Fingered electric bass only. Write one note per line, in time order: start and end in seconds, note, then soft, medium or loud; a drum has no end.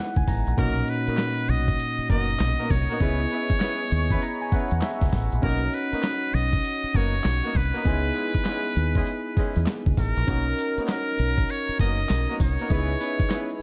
0.17 0.26 C#2 medium
0.28 0.43 A1 medium
0.47 0.56 A#1 medium
0.58 0.83 B1 loud
1.08 muted fingered electric bass stroke soft
1.49 1.74 B1 loud
1.99 muted fingered electric bass stroke soft
2.10 2.35 F#1 medium
2.40 2.56 B1 medium
2.71 2.86 C2 medium
3.01 3.25 C#2 loud
3.50 muted fingered electric bass stroke medium
3.92 4.16 D#2 medium
4.52 muted fingered electric bass stroke soft
4.72 4.81 E2 medium
5.02 5.11 C#2 medium
5.13 5.28 A1 loud
5.33 5.41 A#1 medium
5.43 5.68 B1 loud
5.93 muted fingered electric bass stroke soft
6.34 6.59 B1 loud
6.84 muted fingered electric bass stroke soft
6.95 7.19 F#1 medium
7.25 7.41 B1 medium
7.55 7.71 C2 loud
7.85 8.10 C#2 loud
8.35 muted fingered electric bass stroke medium
8.77 9.01 D#2 loud
9.37 muted fingered electric bass stroke soft
9.57 9.65 E2 medium
9.87 9.96 C#2 loud
9.98 10.13 A1 medium
10.17 10.26 A#1 medium
10.28 10.53 B1 loud
10.78 muted fingered electric bass stroke soft
11.19 11.44 B1 medium
11.69 muted fingered electric bass stroke soft
11.80 12.04 F#1 medium
12.11 12.26 B1 medium
12.40 12.56 C2 loud
12.70 12.95 C#2 loud
13.20 muted fingered electric bass stroke soft